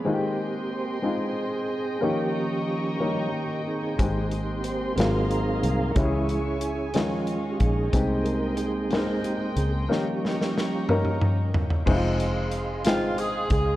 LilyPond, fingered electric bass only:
\new Staff \with { instrumentName = "Fingered electric bass" } { \clef bass \time 6/8 \key aes \major \tempo 4. = 61 r2. | r2. | aes,,4. aes,,4 c,8 | des,4. ees,4 bes,,8 |
c,2~ c,8 des,8 | r2. | f,,4. aes,,4 des,8 | }